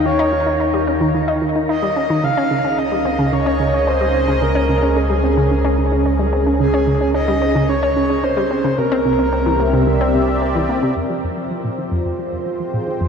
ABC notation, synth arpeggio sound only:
X:1
M:4/4
L:1/16
Q:1/4=110
K:Dblyd
V:1 name="Synth arpeggio sound" clef=bass
E, E E, E E G, D E, E, E E, E E G, D E, | D, D D, D D G, C D, D, D D, D D G, C D, | D, D D, D D G, C D, D, D D, D D G, C D, | D, D D, D D G, C D, D, D D, D D G, C D, |
C, C C, C C =E, B, C, C, C C, C C E, B, C, | [K:Fdor] F,, F, F,, F, F, B,, E, F,, F,, F, F,, F, F, B,, E, F,, |]